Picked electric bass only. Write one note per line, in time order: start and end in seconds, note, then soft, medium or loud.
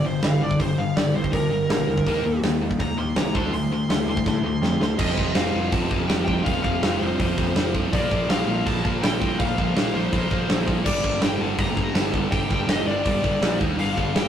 0.05 0.18 G1 medium
0.23 0.50 G1 loud
0.60 0.73 G1 medium
0.78 0.91 G1 medium
0.97 1.10 G1 medium
1.15 1.28 G1 medium
1.33 1.47 D2 loud
1.50 1.64 G1 medium
1.69 1.83 A#1 loud
1.88 2.02 D2 medium
2.07 2.20 D#2 loud
2.24 2.38 D#2 loud
2.41 2.69 D#2 medium
2.80 2.93 D#2 medium
2.98 3.11 D#2 medium
3.16 3.35 C2 loud
3.35 3.48 D2 medium
3.52 3.66 D2 medium
3.70 3.84 D2 medium
3.89 4.02 D2 medium
4.06 4.20 D2 medium
4.26 4.40 A2 loud
4.43 4.57 D2 medium
4.61 4.76 F2 medium
4.80 4.94 D2 loud
4.99 5.13 F1 loud
5.18 5.32 F1 loud
5.34 5.49 F1 medium
5.54 5.68 F1 medium
5.73 5.87 F1 loud
5.91 6.05 F1 medium
6.09 6.38 F1 medium
6.46 6.60 F1 loud
6.65 6.79 F1 medium
6.83 6.97 F1 loud
7.01 7.15 F1 loud
7.20 7.34 F1 loud
7.38 7.52 F1 medium
7.55 7.84 F1 loud
7.93 8.07 A#1 medium
8.12 8.25 A#1 loud
8.28 8.43 A#1 loud
8.46 8.61 A#1 medium
8.67 8.81 A#1 loud
8.85 8.99 A#1 medium
9.03 9.31 A#1 loud
9.40 9.54 A#1 loud
9.58 9.72 A#1 medium
9.76 9.90 A#1 medium
9.94 10.08 A#1 medium
10.13 10.27 A#1 medium
10.31 10.45 A#1 medium
10.49 10.77 A#1 loud
10.85 11.00 G1 loud
11.04 11.18 G1 medium
11.22 11.36 G1 medium
11.40 11.55 G1 medium
11.58 11.73 G1 medium
11.77 11.91 G1 medium
11.94 12.23 G1 loud
12.32 12.46 G1 loud
12.51 12.65 G1 medium
12.67 12.82 G1 medium
12.86 13.01 G1 medium
13.06 13.20 G1 loud
13.24 13.38 G1 medium
13.42 13.56 A#1 loud
13.61 13.75 D#2 loud
13.78 13.93 G1 loud
13.98 14.12 G1 medium
14.16 14.28 G1 loud